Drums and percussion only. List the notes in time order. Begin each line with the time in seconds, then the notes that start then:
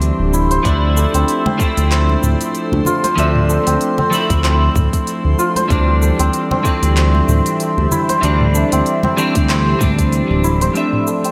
0.02 open hi-hat, shaker
0.34 shaker
0.51 open hi-hat, shaker
0.65 kick, open hi-hat, shaker
0.97 shaker
1.14 open hi-hat, shaker
1.28 open hi-hat, shaker
1.46 muted conga, high conga, low conga
1.60 kick, shaker
1.77 open hi-hat, muted conga, shaker
1.92 clap, open hi-hat, shaker
2.09 high conga
2.23 mid tom, shaker
2.41 open hi-hat, shaker
2.55 open hi-hat, shaker
2.73 low conga
2.85 low conga, shaker
3.04 open hi-hat, muted conga, shaker
3.18 open hi-hat, shaker
3.35 mid tom
3.50 shaker
3.67 open hi-hat, high conga, shaker
3.81 open hi-hat, shaker
3.98 muted conga, high conga, low conga
4.13 shaker
4.30 kick, open hi-hat, muted conga, shaker
4.44 clap, open hi-hat, shaker
4.75 kick, mid tom, high conga, shaker
4.93 kick, open hi-hat, shaker
5.07 open hi-hat, shaker
5.39 shaker
5.56 open hi-hat, high conga, shaker
5.70 kick, open hi-hat, shaker
6.02 shaker
6.19 open hi-hat, shaker
6.33 open hi-hat, shaker
6.51 muted conga, high conga, low conga
6.65 kick, shaker
6.83 open hi-hat, muted conga, shaker
6.97 clap, open hi-hat, shaker
7.15 high conga
7.28 mid tom, shaker
7.46 open hi-hat, shaker
7.60 open hi-hat, shaker
7.78 low conga
7.92 low conga, shaker
8.09 open hi-hat, muted conga, shaker
8.23 open hi-hat, shaker
8.41 mid tom
8.55 shaker
8.72 open hi-hat, high conga, shaker
8.86 open hi-hat, shaker
9.03 muted conga, high conga, low conga
9.18 shaker
9.35 kick, open hi-hat, muted conga, shaker
9.49 clap, open hi-hat, shaker
9.81 kick, mid tom, high conga, shaker
9.98 kick, open hi-hat, shaker
10.12 open hi-hat, shaker
10.31 high conga
10.44 shaker
10.61 open hi-hat, high conga, shaker
10.75 open hi-hat, shaker
10.93 mid tom
11.07 shaker
11.24 open hi-hat, shaker